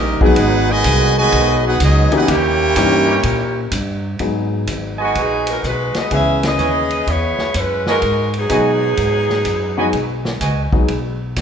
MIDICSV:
0, 0, Header, 1, 10, 480
1, 0, Start_track
1, 0, Key_signature, 5, "minor"
1, 0, Tempo, 478088
1, 375, Time_signature, 4, 2, 24, 8
1, 11459, End_track
2, 0, Start_track
2, 0, Title_t, "Trumpet section"
2, 0, Program_c, 0, 61
2, 5004, Note_on_c, 0, 75, 89
2, 5005, Note_on_c, 0, 80, 97
2, 5007, Note_on_c, 0, 66, 89
2, 5009, Note_on_c, 0, 71, 83
2, 5616, Note_off_c, 0, 75, 0
2, 5617, Note_off_c, 0, 80, 0
2, 5618, Note_off_c, 0, 66, 0
2, 5619, Note_off_c, 0, 71, 0
2, 6607, Note_on_c, 0, 80, 90
2, 6609, Note_on_c, 0, 64, 79
2, 6609, Note_on_c, 0, 71, 69
2, 6613, Note_on_c, 0, 73, 75
2, 6824, Note_off_c, 0, 80, 0
2, 6825, Note_off_c, 0, 64, 0
2, 6825, Note_off_c, 0, 71, 0
2, 6828, Note_off_c, 0, 73, 0
2, 7897, Note_on_c, 0, 71, 78
2, 7899, Note_on_c, 0, 75, 78
2, 7899, Note_on_c, 0, 80, 94
2, 7901, Note_on_c, 0, 66, 90
2, 8004, Note_off_c, 0, 71, 0
2, 8005, Note_off_c, 0, 75, 0
2, 8006, Note_off_c, 0, 80, 0
2, 8007, Note_off_c, 0, 66, 0
2, 8537, Note_on_c, 0, 66, 88
2, 8537, Note_on_c, 0, 75, 79
2, 8538, Note_on_c, 0, 71, 77
2, 8538, Note_on_c, 0, 80, 100
2, 8751, Note_off_c, 0, 66, 0
2, 8751, Note_off_c, 0, 75, 0
2, 8751, Note_off_c, 0, 80, 0
2, 8752, Note_off_c, 0, 71, 0
2, 9809, Note_on_c, 0, 66, 85
2, 9812, Note_on_c, 0, 71, 80
2, 9812, Note_on_c, 0, 75, 83
2, 9813, Note_on_c, 0, 80, 99
2, 9920, Note_off_c, 0, 66, 0
2, 9922, Note_off_c, 0, 71, 0
2, 9922, Note_off_c, 0, 75, 0
2, 9922, Note_off_c, 0, 80, 0
2, 10449, Note_on_c, 0, 80, 80
2, 10450, Note_on_c, 0, 75, 69
2, 10452, Note_on_c, 0, 66, 76
2, 10452, Note_on_c, 0, 71, 66
2, 10667, Note_off_c, 0, 75, 0
2, 10667, Note_off_c, 0, 80, 0
2, 10669, Note_off_c, 0, 66, 0
2, 10669, Note_off_c, 0, 71, 0
2, 11459, End_track
3, 0, Start_track
3, 0, Title_t, "Trumpet section"
3, 0, Program_c, 1, 61
3, 0, Note_on_c, 1, 61, 94
3, 0, Note_on_c, 1, 67, 87
3, 0, Note_on_c, 1, 70, 92
3, 0, Note_on_c, 1, 75, 101
3, 185, Note_off_c, 1, 70, 0
3, 186, Note_off_c, 1, 75, 0
3, 187, Note_off_c, 1, 67, 0
3, 189, Note_off_c, 1, 61, 0
3, 236, Note_on_c, 1, 71, 99
3, 239, Note_on_c, 1, 68, 99
3, 239, Note_on_c, 1, 78, 119
3, 240, Note_on_c, 1, 63, 97
3, 697, Note_off_c, 1, 71, 0
3, 706, Note_off_c, 1, 63, 0
3, 706, Note_off_c, 1, 68, 0
3, 706, Note_off_c, 1, 78, 0
3, 706, Note_on_c, 1, 66, 100
3, 708, Note_on_c, 1, 80, 116
3, 709, Note_on_c, 1, 71, 105
3, 709, Note_on_c, 1, 75, 103
3, 1172, Note_off_c, 1, 80, 0
3, 1173, Note_off_c, 1, 75, 0
3, 1175, Note_off_c, 1, 66, 0
3, 1176, Note_off_c, 1, 71, 0
3, 1184, Note_on_c, 1, 80, 118
3, 1185, Note_on_c, 1, 75, 104
3, 1187, Note_on_c, 1, 66, 106
3, 1188, Note_on_c, 1, 71, 103
3, 1624, Note_off_c, 1, 80, 0
3, 1625, Note_off_c, 1, 75, 0
3, 1626, Note_off_c, 1, 66, 0
3, 1627, Note_off_c, 1, 71, 0
3, 1677, Note_on_c, 1, 71, 89
3, 1678, Note_on_c, 1, 68, 91
3, 1682, Note_on_c, 1, 63, 86
3, 1683, Note_on_c, 1, 78, 103
3, 1816, Note_off_c, 1, 68, 0
3, 1816, Note_off_c, 1, 71, 0
3, 1818, Note_off_c, 1, 63, 0
3, 1819, Note_off_c, 1, 78, 0
3, 1844, Note_on_c, 1, 75, 102
3, 1850, Note_on_c, 1, 59, 85
3, 1852, Note_on_c, 1, 66, 83
3, 1852, Note_on_c, 1, 68, 84
3, 2125, Note_off_c, 1, 75, 0
3, 2129, Note_off_c, 1, 59, 0
3, 2129, Note_off_c, 1, 66, 0
3, 2129, Note_off_c, 1, 68, 0
3, 2167, Note_on_c, 1, 63, 84
3, 2169, Note_on_c, 1, 71, 90
3, 2171, Note_on_c, 1, 78, 104
3, 2174, Note_on_c, 1, 68, 80
3, 2310, Note_off_c, 1, 63, 0
3, 2312, Note_off_c, 1, 71, 0
3, 2312, Note_off_c, 1, 78, 0
3, 2314, Note_off_c, 1, 68, 0
3, 2318, Note_on_c, 1, 70, 102
3, 2321, Note_on_c, 1, 73, 97
3, 2325, Note_on_c, 1, 64, 103
3, 2326, Note_on_c, 1, 79, 107
3, 3703, Note_off_c, 1, 70, 0
3, 3705, Note_off_c, 1, 73, 0
3, 3707, Note_off_c, 1, 64, 0
3, 3708, Note_off_c, 1, 79, 0
3, 11459, End_track
4, 0, Start_track
4, 0, Title_t, "Saxophone section"
4, 0, Program_c, 2, 65
4, 5036, Note_on_c, 2, 56, 78
4, 5037, Note_on_c, 2, 51, 73
4, 5037, Note_on_c, 2, 59, 72
4, 5039, Note_on_c, 2, 66, 87
4, 5174, Note_off_c, 2, 56, 0
4, 5175, Note_off_c, 2, 51, 0
4, 5175, Note_off_c, 2, 59, 0
4, 5176, Note_off_c, 2, 66, 0
4, 5198, Note_on_c, 2, 63, 81
4, 5201, Note_on_c, 2, 59, 82
4, 5209, Note_on_c, 2, 54, 81
4, 5209, Note_on_c, 2, 68, 90
4, 5503, Note_off_c, 2, 63, 0
4, 5504, Note_off_c, 2, 59, 0
4, 5508, Note_off_c, 2, 54, 0
4, 5508, Note_off_c, 2, 68, 0
4, 5516, Note_on_c, 2, 70, 89
4, 5521, Note_on_c, 2, 54, 79
4, 5522, Note_on_c, 2, 59, 74
4, 5525, Note_on_c, 2, 63, 76
4, 5654, Note_off_c, 2, 70, 0
4, 5657, Note_off_c, 2, 54, 0
4, 5657, Note_off_c, 2, 59, 0
4, 5659, Note_off_c, 2, 63, 0
4, 5683, Note_on_c, 2, 71, 91
4, 5687, Note_on_c, 2, 56, 81
4, 5689, Note_on_c, 2, 63, 82
4, 5691, Note_on_c, 2, 66, 83
4, 5965, Note_off_c, 2, 71, 0
4, 5966, Note_off_c, 2, 56, 0
4, 5968, Note_off_c, 2, 63, 0
4, 5968, Note_off_c, 2, 66, 0
4, 5986, Note_on_c, 2, 75, 93
4, 5987, Note_on_c, 2, 59, 85
4, 5988, Note_on_c, 2, 68, 82
4, 5992, Note_on_c, 2, 66, 77
4, 6137, Note_off_c, 2, 68, 0
4, 6140, Note_off_c, 2, 59, 0
4, 6140, Note_off_c, 2, 75, 0
4, 6143, Note_off_c, 2, 66, 0
4, 6149, Note_on_c, 2, 68, 93
4, 6155, Note_on_c, 2, 71, 96
4, 6157, Note_on_c, 2, 61, 91
4, 6159, Note_on_c, 2, 76, 108
4, 6437, Note_off_c, 2, 68, 0
4, 6440, Note_off_c, 2, 71, 0
4, 6442, Note_off_c, 2, 61, 0
4, 6442, Note_off_c, 2, 76, 0
4, 6482, Note_on_c, 2, 61, 92
4, 6483, Note_on_c, 2, 71, 92
4, 6484, Note_on_c, 2, 75, 103
4, 6488, Note_on_c, 2, 68, 97
4, 7108, Note_off_c, 2, 68, 0
4, 7109, Note_off_c, 2, 61, 0
4, 7109, Note_off_c, 2, 71, 0
4, 7110, Note_off_c, 2, 75, 0
4, 7120, Note_on_c, 2, 68, 91
4, 7121, Note_on_c, 2, 59, 87
4, 7121, Note_on_c, 2, 64, 91
4, 7122, Note_on_c, 2, 73, 103
4, 7587, Note_off_c, 2, 64, 0
4, 7587, Note_off_c, 2, 68, 0
4, 7588, Note_off_c, 2, 59, 0
4, 7588, Note_off_c, 2, 73, 0
4, 7592, Note_on_c, 2, 56, 81
4, 7592, Note_on_c, 2, 71, 97
4, 7598, Note_on_c, 2, 64, 84
4, 7600, Note_on_c, 2, 61, 82
4, 7901, Note_off_c, 2, 56, 0
4, 7901, Note_off_c, 2, 71, 0
4, 7904, Note_off_c, 2, 64, 0
4, 7905, Note_off_c, 2, 61, 0
4, 7913, Note_on_c, 2, 56, 82
4, 7916, Note_on_c, 2, 70, 91
4, 7920, Note_on_c, 2, 63, 86
4, 7922, Note_on_c, 2, 66, 83
4, 8350, Note_off_c, 2, 56, 0
4, 8351, Note_off_c, 2, 70, 0
4, 8354, Note_off_c, 2, 63, 0
4, 8355, Note_off_c, 2, 66, 0
4, 8409, Note_on_c, 2, 54, 85
4, 8414, Note_on_c, 2, 63, 85
4, 8414, Note_on_c, 2, 68, 96
4, 8415, Note_on_c, 2, 59, 77
4, 10312, Note_off_c, 2, 54, 0
4, 10315, Note_off_c, 2, 63, 0
4, 10315, Note_off_c, 2, 68, 0
4, 10316, Note_off_c, 2, 59, 0
4, 11459, End_track
5, 0, Start_track
5, 0, Title_t, "Trombone section"
5, 0, Program_c, 3, 61
5, 374, Note_on_c, 3, 68, 109
5, 375, Note_on_c, 3, 54, 101
5, 375, Note_on_c, 3, 59, 90
5, 380, Note_on_c, 3, 63, 94
5, 1716, Note_off_c, 3, 54, 0
5, 1716, Note_off_c, 3, 59, 0
5, 1716, Note_off_c, 3, 68, 0
5, 1719, Note_off_c, 3, 63, 0
5, 2273, Note_on_c, 3, 63, 92
5, 2275, Note_on_c, 3, 52, 103
5, 2276, Note_on_c, 3, 61, 92
5, 2281, Note_on_c, 3, 67, 114
5, 2495, Note_off_c, 3, 63, 0
5, 2496, Note_off_c, 3, 52, 0
5, 2496, Note_off_c, 3, 61, 0
5, 2500, Note_off_c, 3, 67, 0
5, 3085, Note_on_c, 3, 63, 101
5, 3085, Note_on_c, 3, 67, 115
5, 3090, Note_on_c, 3, 52, 108
5, 3093, Note_on_c, 3, 61, 102
5, 3196, Note_off_c, 3, 63, 0
5, 3196, Note_off_c, 3, 67, 0
5, 3199, Note_off_c, 3, 52, 0
5, 3201, Note_off_c, 3, 61, 0
5, 11459, End_track
6, 0, Start_track
6, 0, Title_t, "Grand piano"
6, 0, Program_c, 4, 0
6, 210, Note_on_c, 4, 54, 90
6, 218, Note_on_c, 4, 56, 84
6, 218, Note_on_c, 4, 59, 77
6, 220, Note_on_c, 4, 68, 101
6, 221, Note_on_c, 4, 63, 81
6, 357, Note_off_c, 4, 54, 0
6, 361, Note_off_c, 4, 56, 0
6, 361, Note_off_c, 4, 59, 0
6, 362, Note_off_c, 4, 68, 0
6, 363, Note_off_c, 4, 63, 0
6, 2128, Note_on_c, 4, 52, 83
6, 2131, Note_on_c, 4, 61, 76
6, 2131, Note_on_c, 4, 67, 92
6, 2132, Note_on_c, 4, 58, 71
6, 2136, Note_on_c, 4, 63, 75
6, 2275, Note_off_c, 4, 52, 0
6, 2276, Note_off_c, 4, 61, 0
6, 2276, Note_off_c, 4, 67, 0
6, 2277, Note_off_c, 4, 58, 0
6, 2279, Note_off_c, 4, 63, 0
6, 2772, Note_on_c, 4, 61, 64
6, 2774, Note_on_c, 4, 52, 75
6, 2777, Note_on_c, 4, 58, 66
6, 2778, Note_on_c, 4, 67, 84
6, 2780, Note_on_c, 4, 63, 65
6, 3058, Note_off_c, 4, 61, 0
6, 3059, Note_off_c, 4, 52, 0
6, 3060, Note_off_c, 4, 58, 0
6, 3061, Note_off_c, 4, 67, 0
6, 3062, Note_off_c, 4, 63, 0
6, 4216, Note_on_c, 4, 54, 59
6, 4218, Note_on_c, 4, 68, 64
6, 4219, Note_on_c, 4, 56, 54
6, 4221, Note_on_c, 4, 63, 56
6, 4224, Note_on_c, 4, 59, 53
6, 5557, Note_off_c, 4, 54, 0
6, 5558, Note_off_c, 4, 56, 0
6, 5558, Note_off_c, 4, 68, 0
6, 5559, Note_off_c, 4, 63, 0
6, 5561, Note_off_c, 4, 59, 0
6, 6138, Note_on_c, 4, 52, 61
6, 6139, Note_on_c, 4, 56, 57
6, 6142, Note_on_c, 4, 61, 59
6, 6146, Note_on_c, 4, 68, 67
6, 6147, Note_on_c, 4, 59, 55
6, 6870, Note_off_c, 4, 52, 0
6, 6871, Note_off_c, 4, 56, 0
6, 6872, Note_off_c, 4, 61, 0
6, 6874, Note_off_c, 4, 59, 0
6, 6874, Note_off_c, 4, 68, 0
6, 8529, Note_on_c, 4, 59, 63
6, 8532, Note_on_c, 4, 54, 75
6, 8533, Note_on_c, 4, 68, 83
6, 8536, Note_on_c, 4, 56, 68
6, 8537, Note_on_c, 4, 63, 67
6, 8818, Note_off_c, 4, 59, 0
6, 8820, Note_off_c, 4, 54, 0
6, 8820, Note_off_c, 4, 68, 0
6, 8822, Note_off_c, 4, 56, 0
6, 8822, Note_off_c, 4, 63, 0
6, 9816, Note_on_c, 4, 54, 73
6, 9816, Note_on_c, 4, 68, 79
6, 9817, Note_on_c, 4, 59, 65
6, 9818, Note_on_c, 4, 56, 63
6, 9818, Note_on_c, 4, 63, 64
6, 9961, Note_off_c, 4, 54, 0
6, 9961, Note_off_c, 4, 56, 0
6, 9961, Note_off_c, 4, 59, 0
6, 9961, Note_off_c, 4, 68, 0
6, 9962, Note_off_c, 4, 63, 0
6, 10765, Note_on_c, 4, 54, 71
6, 10772, Note_on_c, 4, 59, 66
6, 10772, Note_on_c, 4, 68, 80
6, 10773, Note_on_c, 4, 63, 62
6, 10776, Note_on_c, 4, 56, 66
6, 10916, Note_off_c, 4, 54, 0
6, 10919, Note_off_c, 4, 59, 0
6, 10919, Note_off_c, 4, 68, 0
6, 10920, Note_off_c, 4, 63, 0
6, 10921, Note_off_c, 4, 56, 0
6, 11459, End_track
7, 0, Start_track
7, 0, Title_t, "Trombone section"
7, 0, Program_c, 5, 61
7, 0, Note_on_c, 5, 55, 89
7, 0, Note_on_c, 5, 58, 88
7, 0, Note_on_c, 5, 63, 86
7, 185, Note_off_c, 5, 55, 0
7, 186, Note_off_c, 5, 58, 0
7, 186, Note_off_c, 5, 63, 0
7, 231, Note_on_c, 5, 63, 98
7, 232, Note_on_c, 5, 59, 101
7, 235, Note_on_c, 5, 66, 95
7, 701, Note_off_c, 5, 63, 0
7, 702, Note_off_c, 5, 59, 0
7, 704, Note_off_c, 5, 66, 0
7, 704, Note_on_c, 5, 56, 94
7, 710, Note_on_c, 5, 51, 101
7, 714, Note_on_c, 5, 47, 95
7, 1177, Note_off_c, 5, 51, 0
7, 1178, Note_off_c, 5, 56, 0
7, 1183, Note_off_c, 5, 47, 0
7, 1189, Note_on_c, 5, 51, 98
7, 1193, Note_on_c, 5, 56, 103
7, 1200, Note_on_c, 5, 47, 98
7, 1627, Note_off_c, 5, 51, 0
7, 1629, Note_off_c, 5, 56, 0
7, 1633, Note_off_c, 5, 47, 0
7, 1673, Note_on_c, 5, 59, 90
7, 1673, Note_on_c, 5, 63, 89
7, 1678, Note_on_c, 5, 66, 87
7, 1813, Note_off_c, 5, 59, 0
7, 1813, Note_off_c, 5, 63, 0
7, 1816, Note_off_c, 5, 66, 0
7, 1849, Note_on_c, 5, 59, 78
7, 1851, Note_on_c, 5, 54, 81
7, 1851, Note_on_c, 5, 63, 84
7, 2128, Note_off_c, 5, 59, 0
7, 2129, Note_off_c, 5, 54, 0
7, 2129, Note_off_c, 5, 63, 0
7, 2152, Note_on_c, 5, 63, 88
7, 2153, Note_on_c, 5, 66, 84
7, 2157, Note_on_c, 5, 59, 87
7, 2303, Note_off_c, 5, 63, 0
7, 2304, Note_off_c, 5, 66, 0
7, 2306, Note_off_c, 5, 59, 0
7, 2318, Note_on_c, 5, 61, 93
7, 2320, Note_on_c, 5, 67, 85
7, 2323, Note_on_c, 5, 58, 89
7, 3704, Note_off_c, 5, 61, 0
7, 3705, Note_off_c, 5, 67, 0
7, 3706, Note_off_c, 5, 58, 0
7, 11459, End_track
8, 0, Start_track
8, 0, Title_t, "Upright bass"
8, 0, Program_c, 6, 32
8, 0, Note_on_c, 6, 34, 99
8, 190, Note_off_c, 6, 34, 0
8, 368, Note_on_c, 6, 32, 98
8, 836, Note_off_c, 6, 32, 0
8, 850, Note_on_c, 6, 36, 101
8, 1317, Note_off_c, 6, 36, 0
8, 1332, Note_on_c, 6, 35, 96
8, 1798, Note_off_c, 6, 35, 0
8, 1809, Note_on_c, 6, 37, 105
8, 2106, Note_off_c, 6, 37, 0
8, 2293, Note_on_c, 6, 39, 99
8, 2757, Note_off_c, 6, 39, 0
8, 2772, Note_on_c, 6, 43, 102
8, 3237, Note_off_c, 6, 43, 0
8, 3252, Note_on_c, 6, 46, 90
8, 3717, Note_off_c, 6, 46, 0
8, 3729, Note_on_c, 6, 43, 96
8, 4195, Note_off_c, 6, 43, 0
8, 4215, Note_on_c, 6, 44, 85
8, 4678, Note_off_c, 6, 44, 0
8, 4694, Note_on_c, 6, 32, 89
8, 5158, Note_off_c, 6, 32, 0
8, 5178, Note_on_c, 6, 34, 88
8, 5640, Note_off_c, 6, 34, 0
8, 5656, Note_on_c, 6, 35, 91
8, 5950, Note_off_c, 6, 35, 0
8, 6136, Note_on_c, 6, 37, 87
8, 6600, Note_off_c, 6, 37, 0
8, 6608, Note_on_c, 6, 39, 90
8, 7076, Note_off_c, 6, 39, 0
8, 7099, Note_on_c, 6, 40, 86
8, 7392, Note_off_c, 6, 40, 0
8, 7576, Note_on_c, 6, 42, 93
8, 8041, Note_off_c, 6, 42, 0
8, 8056, Note_on_c, 6, 44, 89
8, 8521, Note_off_c, 6, 44, 0
8, 8534, Note_on_c, 6, 47, 91
8, 9000, Note_off_c, 6, 47, 0
8, 9013, Note_on_c, 6, 44, 89
8, 9480, Note_off_c, 6, 44, 0
8, 9492, Note_on_c, 6, 42, 94
8, 9959, Note_off_c, 6, 42, 0
8, 9974, Note_on_c, 6, 35, 88
8, 10441, Note_off_c, 6, 35, 0
8, 10450, Note_on_c, 6, 37, 89
8, 10749, Note_off_c, 6, 37, 0
8, 10929, Note_on_c, 6, 35, 80
8, 11399, Note_off_c, 6, 35, 0
8, 11411, Note_on_c, 6, 39, 96
8, 11459, Note_off_c, 6, 39, 0
8, 11459, End_track
9, 0, Start_track
9, 0, Title_t, "Muted upright bass strokes"
9, 207, Note_on_c, 9, 29, 45
9, 308, Note_off_c, 9, 29, 0
9, 5984, Note_on_c, 9, 29, 41
9, 6084, Note_off_c, 9, 29, 0
9, 7410, Note_on_c, 9, 29, 35
9, 7510, Note_off_c, 9, 29, 0
9, 10765, Note_on_c, 9, 29, 39
9, 10865, Note_off_c, 9, 29, 0
9, 11459, End_track
10, 0, Start_track
10, 0, Title_t, "Drums"
10, 210, Note_on_c, 9, 36, 71
10, 310, Note_off_c, 9, 36, 0
10, 362, Note_on_c, 9, 51, 74
10, 462, Note_off_c, 9, 51, 0
10, 844, Note_on_c, 9, 44, 71
10, 844, Note_on_c, 9, 51, 79
10, 851, Note_on_c, 9, 36, 25
10, 944, Note_off_c, 9, 44, 0
10, 944, Note_off_c, 9, 51, 0
10, 952, Note_off_c, 9, 36, 0
10, 1329, Note_on_c, 9, 51, 74
10, 1331, Note_on_c, 9, 36, 26
10, 1429, Note_off_c, 9, 51, 0
10, 1431, Note_off_c, 9, 36, 0
10, 1808, Note_on_c, 9, 44, 65
10, 1808, Note_on_c, 9, 51, 81
10, 1811, Note_on_c, 9, 36, 26
10, 1909, Note_off_c, 9, 44, 0
10, 1909, Note_off_c, 9, 51, 0
10, 1912, Note_off_c, 9, 36, 0
10, 2126, Note_on_c, 9, 51, 54
10, 2226, Note_off_c, 9, 51, 0
10, 2291, Note_on_c, 9, 51, 74
10, 2293, Note_on_c, 9, 36, 27
10, 2392, Note_off_c, 9, 51, 0
10, 2394, Note_off_c, 9, 36, 0
10, 2770, Note_on_c, 9, 44, 64
10, 2770, Note_on_c, 9, 51, 85
10, 2772, Note_on_c, 9, 36, 22
10, 2871, Note_off_c, 9, 44, 0
10, 2871, Note_off_c, 9, 51, 0
10, 2873, Note_off_c, 9, 36, 0
10, 3246, Note_on_c, 9, 51, 73
10, 3252, Note_on_c, 9, 36, 21
10, 3347, Note_off_c, 9, 51, 0
10, 3352, Note_off_c, 9, 36, 0
10, 3730, Note_on_c, 9, 44, 74
10, 3730, Note_on_c, 9, 51, 81
10, 3732, Note_on_c, 9, 36, 24
10, 3831, Note_off_c, 9, 44, 0
10, 3831, Note_off_c, 9, 51, 0
10, 3833, Note_off_c, 9, 36, 0
10, 4208, Note_on_c, 9, 51, 57
10, 4212, Note_on_c, 9, 36, 21
10, 4309, Note_off_c, 9, 51, 0
10, 4313, Note_off_c, 9, 36, 0
10, 4693, Note_on_c, 9, 44, 60
10, 4693, Note_on_c, 9, 51, 71
10, 4694, Note_on_c, 9, 36, 21
10, 4793, Note_off_c, 9, 44, 0
10, 4793, Note_off_c, 9, 51, 0
10, 4794, Note_off_c, 9, 36, 0
10, 5175, Note_on_c, 9, 51, 65
10, 5177, Note_on_c, 9, 36, 22
10, 5275, Note_off_c, 9, 51, 0
10, 5277, Note_off_c, 9, 36, 0
10, 5489, Note_on_c, 9, 51, 70
10, 5590, Note_off_c, 9, 51, 0
10, 5657, Note_on_c, 9, 36, 27
10, 5659, Note_on_c, 9, 44, 65
10, 5758, Note_off_c, 9, 36, 0
10, 5760, Note_off_c, 9, 44, 0
10, 5968, Note_on_c, 9, 51, 50
10, 5972, Note_on_c, 9, 38, 57
10, 6069, Note_off_c, 9, 51, 0
10, 6073, Note_off_c, 9, 38, 0
10, 6133, Note_on_c, 9, 51, 60
10, 6135, Note_on_c, 9, 36, 27
10, 6233, Note_off_c, 9, 51, 0
10, 6235, Note_off_c, 9, 36, 0
10, 6458, Note_on_c, 9, 51, 62
10, 6462, Note_on_c, 9, 38, 77
10, 6558, Note_off_c, 9, 51, 0
10, 6562, Note_off_c, 9, 38, 0
10, 6609, Note_on_c, 9, 44, 54
10, 6710, Note_off_c, 9, 44, 0
10, 6933, Note_on_c, 9, 51, 49
10, 7033, Note_off_c, 9, 51, 0
10, 7098, Note_on_c, 9, 36, 23
10, 7102, Note_on_c, 9, 51, 62
10, 7198, Note_off_c, 9, 36, 0
10, 7202, Note_off_c, 9, 51, 0
10, 7413, Note_on_c, 9, 38, 45
10, 7513, Note_off_c, 9, 38, 0
10, 7572, Note_on_c, 9, 44, 66
10, 7572, Note_on_c, 9, 51, 70
10, 7575, Note_on_c, 9, 36, 22
10, 7672, Note_off_c, 9, 44, 0
10, 7672, Note_off_c, 9, 51, 0
10, 7676, Note_off_c, 9, 36, 0
10, 7895, Note_on_c, 9, 38, 59
10, 7995, Note_off_c, 9, 38, 0
10, 8050, Note_on_c, 9, 51, 63
10, 8054, Note_on_c, 9, 36, 24
10, 8151, Note_off_c, 9, 51, 0
10, 8154, Note_off_c, 9, 36, 0
10, 8369, Note_on_c, 9, 51, 48
10, 8469, Note_off_c, 9, 51, 0
10, 8529, Note_on_c, 9, 44, 65
10, 8529, Note_on_c, 9, 51, 68
10, 8534, Note_on_c, 9, 36, 22
10, 8630, Note_off_c, 9, 44, 0
10, 8630, Note_off_c, 9, 51, 0
10, 8634, Note_off_c, 9, 36, 0
10, 9009, Note_on_c, 9, 51, 65
10, 9013, Note_on_c, 9, 36, 20
10, 9110, Note_off_c, 9, 51, 0
10, 9113, Note_off_c, 9, 36, 0
10, 9331, Note_on_c, 9, 38, 42
10, 9431, Note_off_c, 9, 38, 0
10, 9486, Note_on_c, 9, 44, 60
10, 9486, Note_on_c, 9, 51, 76
10, 9491, Note_on_c, 9, 36, 19
10, 9586, Note_off_c, 9, 44, 0
10, 9586, Note_off_c, 9, 51, 0
10, 9592, Note_off_c, 9, 36, 0
10, 9969, Note_on_c, 9, 51, 59
10, 9970, Note_on_c, 9, 36, 21
10, 10069, Note_off_c, 9, 51, 0
10, 10070, Note_off_c, 9, 36, 0
10, 10292, Note_on_c, 9, 38, 58
10, 10393, Note_off_c, 9, 38, 0
10, 10450, Note_on_c, 9, 36, 26
10, 10450, Note_on_c, 9, 44, 60
10, 10450, Note_on_c, 9, 51, 71
10, 10550, Note_off_c, 9, 44, 0
10, 10550, Note_off_c, 9, 51, 0
10, 10551, Note_off_c, 9, 36, 0
10, 10768, Note_on_c, 9, 36, 69
10, 10868, Note_off_c, 9, 36, 0
10, 10927, Note_on_c, 9, 51, 59
10, 11027, Note_off_c, 9, 51, 0
10, 11409, Note_on_c, 9, 44, 52
10, 11409, Note_on_c, 9, 51, 75
10, 11411, Note_on_c, 9, 36, 23
10, 11413, Note_on_c, 9, 38, 41
10, 11459, Note_off_c, 9, 36, 0
10, 11459, Note_off_c, 9, 38, 0
10, 11459, Note_off_c, 9, 44, 0
10, 11459, Note_off_c, 9, 51, 0
10, 11459, End_track
0, 0, End_of_file